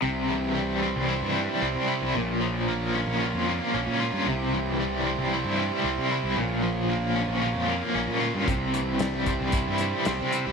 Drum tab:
HH |--------|--------|--------|--------|
SD |--------|--------|--------|--------|
BD |--------|--------|--------|--------|

HH |xxxxxxxx|
SD |--o---o-|
BD |o--oo---|